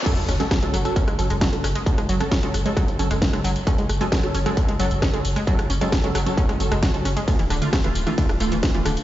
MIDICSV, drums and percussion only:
0, 0, Header, 1, 2, 480
1, 0, Start_track
1, 0, Key_signature, 3, "minor"
1, 0, Tempo, 451128
1, 63, Time_signature, 4, 2, 24, 8
1, 9612, End_track
2, 0, Start_track
2, 0, Title_t, "Drums"
2, 63, Note_on_c, 9, 36, 118
2, 65, Note_on_c, 9, 42, 95
2, 65, Note_on_c, 9, 49, 100
2, 65, Note_on_c, 9, 54, 40
2, 170, Note_off_c, 9, 36, 0
2, 171, Note_off_c, 9, 42, 0
2, 171, Note_off_c, 9, 49, 0
2, 171, Note_off_c, 9, 54, 0
2, 186, Note_on_c, 9, 42, 57
2, 186, Note_on_c, 9, 54, 20
2, 293, Note_off_c, 9, 42, 0
2, 293, Note_off_c, 9, 54, 0
2, 304, Note_on_c, 9, 37, 64
2, 304, Note_on_c, 9, 46, 104
2, 304, Note_on_c, 9, 54, 72
2, 410, Note_off_c, 9, 37, 0
2, 410, Note_off_c, 9, 46, 0
2, 410, Note_off_c, 9, 54, 0
2, 426, Note_on_c, 9, 42, 53
2, 426, Note_on_c, 9, 54, 30
2, 533, Note_off_c, 9, 42, 0
2, 533, Note_off_c, 9, 54, 0
2, 543, Note_on_c, 9, 36, 117
2, 544, Note_on_c, 9, 37, 90
2, 544, Note_on_c, 9, 38, 124
2, 544, Note_on_c, 9, 42, 97
2, 544, Note_on_c, 9, 54, 42
2, 649, Note_off_c, 9, 36, 0
2, 650, Note_off_c, 9, 37, 0
2, 650, Note_off_c, 9, 38, 0
2, 650, Note_off_c, 9, 42, 0
2, 650, Note_off_c, 9, 54, 0
2, 666, Note_on_c, 9, 42, 57
2, 666, Note_on_c, 9, 54, 21
2, 772, Note_off_c, 9, 42, 0
2, 772, Note_off_c, 9, 54, 0
2, 784, Note_on_c, 9, 46, 104
2, 784, Note_on_c, 9, 54, 70
2, 891, Note_off_c, 9, 46, 0
2, 891, Note_off_c, 9, 54, 0
2, 906, Note_on_c, 9, 37, 64
2, 906, Note_on_c, 9, 42, 56
2, 906, Note_on_c, 9, 54, 30
2, 1013, Note_off_c, 9, 37, 0
2, 1013, Note_off_c, 9, 42, 0
2, 1013, Note_off_c, 9, 54, 0
2, 1023, Note_on_c, 9, 36, 117
2, 1024, Note_on_c, 9, 42, 98
2, 1024, Note_on_c, 9, 54, 41
2, 1129, Note_off_c, 9, 36, 0
2, 1130, Note_off_c, 9, 42, 0
2, 1130, Note_off_c, 9, 54, 0
2, 1146, Note_on_c, 9, 37, 92
2, 1146, Note_on_c, 9, 42, 55
2, 1146, Note_on_c, 9, 54, 21
2, 1252, Note_off_c, 9, 37, 0
2, 1252, Note_off_c, 9, 42, 0
2, 1252, Note_off_c, 9, 54, 0
2, 1264, Note_on_c, 9, 46, 108
2, 1264, Note_on_c, 9, 54, 70
2, 1371, Note_off_c, 9, 46, 0
2, 1371, Note_off_c, 9, 54, 0
2, 1386, Note_on_c, 9, 42, 55
2, 1386, Note_on_c, 9, 54, 31
2, 1492, Note_off_c, 9, 42, 0
2, 1492, Note_off_c, 9, 54, 0
2, 1503, Note_on_c, 9, 36, 120
2, 1504, Note_on_c, 9, 37, 62
2, 1504, Note_on_c, 9, 38, 126
2, 1504, Note_on_c, 9, 42, 96
2, 1504, Note_on_c, 9, 54, 40
2, 1609, Note_off_c, 9, 36, 0
2, 1610, Note_off_c, 9, 37, 0
2, 1610, Note_off_c, 9, 38, 0
2, 1610, Note_off_c, 9, 42, 0
2, 1610, Note_off_c, 9, 54, 0
2, 1626, Note_on_c, 9, 42, 57
2, 1626, Note_on_c, 9, 54, 20
2, 1733, Note_off_c, 9, 42, 0
2, 1733, Note_off_c, 9, 54, 0
2, 1746, Note_on_c, 9, 37, 94
2, 1746, Note_on_c, 9, 46, 111
2, 1746, Note_on_c, 9, 54, 74
2, 1852, Note_off_c, 9, 37, 0
2, 1852, Note_off_c, 9, 46, 0
2, 1852, Note_off_c, 9, 54, 0
2, 1867, Note_on_c, 9, 42, 55
2, 1867, Note_on_c, 9, 54, 31
2, 1973, Note_off_c, 9, 42, 0
2, 1973, Note_off_c, 9, 54, 0
2, 1983, Note_on_c, 9, 36, 122
2, 1984, Note_on_c, 9, 42, 96
2, 1984, Note_on_c, 9, 54, 39
2, 2089, Note_off_c, 9, 36, 0
2, 2091, Note_off_c, 9, 42, 0
2, 2091, Note_off_c, 9, 54, 0
2, 2107, Note_on_c, 9, 37, 67
2, 2107, Note_on_c, 9, 42, 55
2, 2107, Note_on_c, 9, 54, 21
2, 2213, Note_off_c, 9, 37, 0
2, 2213, Note_off_c, 9, 42, 0
2, 2213, Note_off_c, 9, 54, 0
2, 2224, Note_on_c, 9, 46, 107
2, 2224, Note_on_c, 9, 54, 70
2, 2331, Note_off_c, 9, 46, 0
2, 2331, Note_off_c, 9, 54, 0
2, 2346, Note_on_c, 9, 37, 94
2, 2346, Note_on_c, 9, 42, 54
2, 2346, Note_on_c, 9, 54, 30
2, 2452, Note_off_c, 9, 37, 0
2, 2452, Note_off_c, 9, 42, 0
2, 2452, Note_off_c, 9, 54, 0
2, 2463, Note_on_c, 9, 36, 121
2, 2464, Note_on_c, 9, 38, 124
2, 2464, Note_on_c, 9, 42, 97
2, 2464, Note_on_c, 9, 54, 40
2, 2570, Note_off_c, 9, 36, 0
2, 2570, Note_off_c, 9, 38, 0
2, 2570, Note_off_c, 9, 42, 0
2, 2570, Note_off_c, 9, 54, 0
2, 2586, Note_on_c, 9, 42, 57
2, 2586, Note_on_c, 9, 54, 21
2, 2692, Note_off_c, 9, 42, 0
2, 2692, Note_off_c, 9, 54, 0
2, 2704, Note_on_c, 9, 37, 66
2, 2704, Note_on_c, 9, 46, 113
2, 2704, Note_on_c, 9, 54, 69
2, 2810, Note_off_c, 9, 37, 0
2, 2810, Note_off_c, 9, 46, 0
2, 2810, Note_off_c, 9, 54, 0
2, 2827, Note_on_c, 9, 42, 55
2, 2827, Note_on_c, 9, 54, 31
2, 2933, Note_off_c, 9, 42, 0
2, 2933, Note_off_c, 9, 54, 0
2, 2943, Note_on_c, 9, 36, 125
2, 2946, Note_on_c, 9, 37, 93
2, 2946, Note_on_c, 9, 42, 96
2, 2946, Note_on_c, 9, 54, 42
2, 3050, Note_off_c, 9, 36, 0
2, 3052, Note_off_c, 9, 37, 0
2, 3052, Note_off_c, 9, 42, 0
2, 3052, Note_off_c, 9, 54, 0
2, 3067, Note_on_c, 9, 42, 59
2, 3067, Note_on_c, 9, 54, 21
2, 3174, Note_off_c, 9, 42, 0
2, 3174, Note_off_c, 9, 54, 0
2, 3185, Note_on_c, 9, 46, 112
2, 3185, Note_on_c, 9, 54, 68
2, 3291, Note_off_c, 9, 46, 0
2, 3291, Note_off_c, 9, 54, 0
2, 3307, Note_on_c, 9, 37, 66
2, 3307, Note_on_c, 9, 42, 56
2, 3307, Note_on_c, 9, 54, 30
2, 3413, Note_off_c, 9, 37, 0
2, 3413, Note_off_c, 9, 42, 0
2, 3413, Note_off_c, 9, 54, 0
2, 3423, Note_on_c, 9, 36, 126
2, 3425, Note_on_c, 9, 38, 121
2, 3425, Note_on_c, 9, 42, 97
2, 3425, Note_on_c, 9, 54, 40
2, 3530, Note_off_c, 9, 36, 0
2, 3532, Note_off_c, 9, 38, 0
2, 3532, Note_off_c, 9, 42, 0
2, 3532, Note_off_c, 9, 54, 0
2, 3547, Note_on_c, 9, 37, 95
2, 3547, Note_on_c, 9, 42, 55
2, 3547, Note_on_c, 9, 54, 20
2, 3653, Note_off_c, 9, 37, 0
2, 3653, Note_off_c, 9, 42, 0
2, 3653, Note_off_c, 9, 54, 0
2, 3665, Note_on_c, 9, 46, 112
2, 3665, Note_on_c, 9, 54, 73
2, 3771, Note_off_c, 9, 46, 0
2, 3771, Note_off_c, 9, 54, 0
2, 3786, Note_on_c, 9, 42, 56
2, 3786, Note_on_c, 9, 54, 30
2, 3893, Note_off_c, 9, 42, 0
2, 3893, Note_off_c, 9, 54, 0
2, 3903, Note_on_c, 9, 36, 125
2, 3904, Note_on_c, 9, 37, 69
2, 3904, Note_on_c, 9, 42, 96
2, 3904, Note_on_c, 9, 54, 43
2, 4010, Note_off_c, 9, 36, 0
2, 4011, Note_off_c, 9, 37, 0
2, 4011, Note_off_c, 9, 42, 0
2, 4011, Note_off_c, 9, 54, 0
2, 4026, Note_on_c, 9, 42, 55
2, 4026, Note_on_c, 9, 54, 21
2, 4132, Note_off_c, 9, 42, 0
2, 4132, Note_off_c, 9, 54, 0
2, 4144, Note_on_c, 9, 37, 92
2, 4144, Note_on_c, 9, 46, 107
2, 4144, Note_on_c, 9, 54, 74
2, 4250, Note_off_c, 9, 37, 0
2, 4250, Note_off_c, 9, 46, 0
2, 4250, Note_off_c, 9, 54, 0
2, 4266, Note_on_c, 9, 42, 54
2, 4266, Note_on_c, 9, 54, 32
2, 4372, Note_off_c, 9, 42, 0
2, 4372, Note_off_c, 9, 54, 0
2, 4383, Note_on_c, 9, 36, 124
2, 4383, Note_on_c, 9, 38, 119
2, 4383, Note_on_c, 9, 42, 95
2, 4383, Note_on_c, 9, 54, 43
2, 4490, Note_off_c, 9, 36, 0
2, 4490, Note_off_c, 9, 38, 0
2, 4490, Note_off_c, 9, 42, 0
2, 4490, Note_off_c, 9, 54, 0
2, 4504, Note_on_c, 9, 37, 69
2, 4504, Note_on_c, 9, 42, 55
2, 4504, Note_on_c, 9, 54, 22
2, 4611, Note_off_c, 9, 37, 0
2, 4611, Note_off_c, 9, 42, 0
2, 4611, Note_off_c, 9, 54, 0
2, 4623, Note_on_c, 9, 46, 113
2, 4623, Note_on_c, 9, 54, 72
2, 4729, Note_off_c, 9, 46, 0
2, 4729, Note_off_c, 9, 54, 0
2, 4745, Note_on_c, 9, 37, 98
2, 4745, Note_on_c, 9, 42, 54
2, 4745, Note_on_c, 9, 54, 31
2, 4852, Note_off_c, 9, 37, 0
2, 4852, Note_off_c, 9, 42, 0
2, 4852, Note_off_c, 9, 54, 0
2, 4863, Note_on_c, 9, 36, 124
2, 4863, Note_on_c, 9, 42, 96
2, 4863, Note_on_c, 9, 54, 43
2, 4970, Note_off_c, 9, 36, 0
2, 4970, Note_off_c, 9, 42, 0
2, 4970, Note_off_c, 9, 54, 0
2, 4985, Note_on_c, 9, 42, 55
2, 4985, Note_on_c, 9, 54, 21
2, 5091, Note_off_c, 9, 42, 0
2, 5091, Note_off_c, 9, 54, 0
2, 5102, Note_on_c, 9, 37, 69
2, 5102, Note_on_c, 9, 46, 114
2, 5102, Note_on_c, 9, 54, 74
2, 5209, Note_off_c, 9, 37, 0
2, 5209, Note_off_c, 9, 46, 0
2, 5209, Note_off_c, 9, 54, 0
2, 5224, Note_on_c, 9, 42, 53
2, 5224, Note_on_c, 9, 54, 31
2, 5331, Note_off_c, 9, 42, 0
2, 5331, Note_off_c, 9, 54, 0
2, 5343, Note_on_c, 9, 36, 127
2, 5343, Note_on_c, 9, 37, 95
2, 5343, Note_on_c, 9, 38, 114
2, 5343, Note_on_c, 9, 42, 96
2, 5343, Note_on_c, 9, 54, 43
2, 5449, Note_off_c, 9, 37, 0
2, 5449, Note_off_c, 9, 38, 0
2, 5449, Note_off_c, 9, 42, 0
2, 5449, Note_off_c, 9, 54, 0
2, 5450, Note_off_c, 9, 36, 0
2, 5464, Note_on_c, 9, 42, 55
2, 5464, Note_on_c, 9, 54, 21
2, 5571, Note_off_c, 9, 42, 0
2, 5571, Note_off_c, 9, 54, 0
2, 5583, Note_on_c, 9, 46, 117
2, 5583, Note_on_c, 9, 54, 76
2, 5689, Note_off_c, 9, 46, 0
2, 5689, Note_off_c, 9, 54, 0
2, 5705, Note_on_c, 9, 37, 70
2, 5705, Note_on_c, 9, 42, 54
2, 5705, Note_on_c, 9, 54, 33
2, 5811, Note_off_c, 9, 37, 0
2, 5811, Note_off_c, 9, 42, 0
2, 5811, Note_off_c, 9, 54, 0
2, 5823, Note_on_c, 9, 36, 126
2, 5823, Note_on_c, 9, 42, 92
2, 5823, Note_on_c, 9, 54, 44
2, 5929, Note_off_c, 9, 36, 0
2, 5930, Note_off_c, 9, 42, 0
2, 5930, Note_off_c, 9, 54, 0
2, 5946, Note_on_c, 9, 37, 98
2, 5946, Note_on_c, 9, 42, 52
2, 5946, Note_on_c, 9, 54, 22
2, 6053, Note_off_c, 9, 37, 0
2, 6053, Note_off_c, 9, 42, 0
2, 6053, Note_off_c, 9, 54, 0
2, 6064, Note_on_c, 9, 46, 110
2, 6064, Note_on_c, 9, 54, 74
2, 6170, Note_off_c, 9, 46, 0
2, 6170, Note_off_c, 9, 54, 0
2, 6185, Note_on_c, 9, 42, 51
2, 6185, Note_on_c, 9, 54, 33
2, 6292, Note_off_c, 9, 42, 0
2, 6292, Note_off_c, 9, 54, 0
2, 6303, Note_on_c, 9, 36, 122
2, 6303, Note_on_c, 9, 37, 70
2, 6303, Note_on_c, 9, 38, 115
2, 6303, Note_on_c, 9, 42, 93
2, 6303, Note_on_c, 9, 54, 44
2, 6409, Note_off_c, 9, 36, 0
2, 6409, Note_off_c, 9, 37, 0
2, 6409, Note_off_c, 9, 38, 0
2, 6409, Note_off_c, 9, 42, 0
2, 6409, Note_off_c, 9, 54, 0
2, 6425, Note_on_c, 9, 42, 53
2, 6425, Note_on_c, 9, 54, 22
2, 6531, Note_off_c, 9, 42, 0
2, 6531, Note_off_c, 9, 54, 0
2, 6543, Note_on_c, 9, 37, 98
2, 6543, Note_on_c, 9, 46, 111
2, 6543, Note_on_c, 9, 54, 75
2, 6650, Note_off_c, 9, 37, 0
2, 6650, Note_off_c, 9, 46, 0
2, 6650, Note_off_c, 9, 54, 0
2, 6666, Note_on_c, 9, 42, 53
2, 6666, Note_on_c, 9, 54, 33
2, 6772, Note_off_c, 9, 42, 0
2, 6772, Note_off_c, 9, 54, 0
2, 6783, Note_on_c, 9, 36, 126
2, 6784, Note_on_c, 9, 42, 93
2, 6784, Note_on_c, 9, 54, 44
2, 6889, Note_off_c, 9, 36, 0
2, 6891, Note_off_c, 9, 42, 0
2, 6891, Note_off_c, 9, 54, 0
2, 6907, Note_on_c, 9, 37, 70
2, 6907, Note_on_c, 9, 42, 53
2, 6907, Note_on_c, 9, 54, 22
2, 7013, Note_off_c, 9, 37, 0
2, 7013, Note_off_c, 9, 42, 0
2, 7013, Note_off_c, 9, 54, 0
2, 7024, Note_on_c, 9, 46, 109
2, 7024, Note_on_c, 9, 54, 77
2, 7130, Note_off_c, 9, 46, 0
2, 7130, Note_off_c, 9, 54, 0
2, 7147, Note_on_c, 9, 37, 99
2, 7147, Note_on_c, 9, 42, 53
2, 7147, Note_on_c, 9, 54, 33
2, 7253, Note_off_c, 9, 37, 0
2, 7253, Note_off_c, 9, 42, 0
2, 7253, Note_off_c, 9, 54, 0
2, 7263, Note_on_c, 9, 36, 127
2, 7264, Note_on_c, 9, 38, 115
2, 7264, Note_on_c, 9, 42, 92
2, 7264, Note_on_c, 9, 54, 43
2, 7369, Note_off_c, 9, 36, 0
2, 7370, Note_off_c, 9, 38, 0
2, 7370, Note_off_c, 9, 42, 0
2, 7370, Note_off_c, 9, 54, 0
2, 7386, Note_on_c, 9, 42, 52
2, 7386, Note_on_c, 9, 54, 21
2, 7492, Note_off_c, 9, 42, 0
2, 7492, Note_off_c, 9, 54, 0
2, 7504, Note_on_c, 9, 37, 72
2, 7504, Note_on_c, 9, 46, 117
2, 7504, Note_on_c, 9, 54, 78
2, 7610, Note_off_c, 9, 37, 0
2, 7610, Note_off_c, 9, 46, 0
2, 7610, Note_off_c, 9, 54, 0
2, 7625, Note_on_c, 9, 42, 52
2, 7625, Note_on_c, 9, 54, 32
2, 7731, Note_off_c, 9, 42, 0
2, 7731, Note_off_c, 9, 54, 0
2, 7743, Note_on_c, 9, 36, 120
2, 7743, Note_on_c, 9, 42, 88
2, 7743, Note_on_c, 9, 51, 66
2, 7743, Note_on_c, 9, 54, 43
2, 7849, Note_off_c, 9, 36, 0
2, 7850, Note_off_c, 9, 42, 0
2, 7850, Note_off_c, 9, 51, 0
2, 7850, Note_off_c, 9, 54, 0
2, 7865, Note_on_c, 9, 42, 50
2, 7865, Note_on_c, 9, 54, 22
2, 7971, Note_off_c, 9, 42, 0
2, 7971, Note_off_c, 9, 54, 0
2, 7984, Note_on_c, 9, 37, 69
2, 7984, Note_on_c, 9, 46, 106
2, 7984, Note_on_c, 9, 54, 75
2, 8090, Note_off_c, 9, 37, 0
2, 8090, Note_off_c, 9, 46, 0
2, 8090, Note_off_c, 9, 54, 0
2, 8105, Note_on_c, 9, 42, 52
2, 8105, Note_on_c, 9, 54, 33
2, 8212, Note_off_c, 9, 42, 0
2, 8212, Note_off_c, 9, 54, 0
2, 8223, Note_on_c, 9, 36, 119
2, 8223, Note_on_c, 9, 37, 94
2, 8223, Note_on_c, 9, 38, 115
2, 8223, Note_on_c, 9, 42, 90
2, 8223, Note_on_c, 9, 51, 69
2, 8223, Note_on_c, 9, 54, 43
2, 8329, Note_off_c, 9, 36, 0
2, 8330, Note_off_c, 9, 37, 0
2, 8330, Note_off_c, 9, 38, 0
2, 8330, Note_off_c, 9, 42, 0
2, 8330, Note_off_c, 9, 51, 0
2, 8330, Note_off_c, 9, 54, 0
2, 8344, Note_on_c, 9, 42, 51
2, 8344, Note_on_c, 9, 54, 22
2, 8451, Note_off_c, 9, 42, 0
2, 8451, Note_off_c, 9, 54, 0
2, 8462, Note_on_c, 9, 46, 106
2, 8462, Note_on_c, 9, 54, 79
2, 8568, Note_off_c, 9, 46, 0
2, 8568, Note_off_c, 9, 54, 0
2, 8584, Note_on_c, 9, 37, 69
2, 8584, Note_on_c, 9, 42, 50
2, 8584, Note_on_c, 9, 54, 34
2, 8690, Note_off_c, 9, 37, 0
2, 8690, Note_off_c, 9, 42, 0
2, 8690, Note_off_c, 9, 54, 0
2, 8702, Note_on_c, 9, 42, 90
2, 8702, Note_on_c, 9, 51, 68
2, 8702, Note_on_c, 9, 54, 45
2, 8703, Note_on_c, 9, 36, 120
2, 8808, Note_off_c, 9, 42, 0
2, 8808, Note_off_c, 9, 51, 0
2, 8808, Note_off_c, 9, 54, 0
2, 8809, Note_off_c, 9, 36, 0
2, 8824, Note_on_c, 9, 37, 96
2, 8824, Note_on_c, 9, 42, 51
2, 8824, Note_on_c, 9, 54, 23
2, 8930, Note_off_c, 9, 37, 0
2, 8930, Note_off_c, 9, 42, 0
2, 8930, Note_off_c, 9, 54, 0
2, 8942, Note_on_c, 9, 46, 105
2, 8942, Note_on_c, 9, 54, 79
2, 9048, Note_off_c, 9, 46, 0
2, 9048, Note_off_c, 9, 54, 0
2, 9063, Note_on_c, 9, 42, 53
2, 9063, Note_on_c, 9, 54, 34
2, 9170, Note_off_c, 9, 42, 0
2, 9170, Note_off_c, 9, 54, 0
2, 9181, Note_on_c, 9, 37, 71
2, 9181, Note_on_c, 9, 38, 118
2, 9181, Note_on_c, 9, 42, 89
2, 9181, Note_on_c, 9, 51, 68
2, 9181, Note_on_c, 9, 54, 45
2, 9183, Note_on_c, 9, 36, 117
2, 9288, Note_off_c, 9, 37, 0
2, 9288, Note_off_c, 9, 38, 0
2, 9288, Note_off_c, 9, 42, 0
2, 9288, Note_off_c, 9, 51, 0
2, 9288, Note_off_c, 9, 54, 0
2, 9289, Note_off_c, 9, 36, 0
2, 9304, Note_on_c, 9, 42, 50
2, 9304, Note_on_c, 9, 54, 22
2, 9410, Note_off_c, 9, 42, 0
2, 9410, Note_off_c, 9, 54, 0
2, 9422, Note_on_c, 9, 37, 98
2, 9422, Note_on_c, 9, 46, 108
2, 9422, Note_on_c, 9, 54, 81
2, 9528, Note_off_c, 9, 37, 0
2, 9528, Note_off_c, 9, 46, 0
2, 9528, Note_off_c, 9, 54, 0
2, 9544, Note_on_c, 9, 42, 51
2, 9544, Note_on_c, 9, 54, 33
2, 9612, Note_off_c, 9, 42, 0
2, 9612, Note_off_c, 9, 54, 0
2, 9612, End_track
0, 0, End_of_file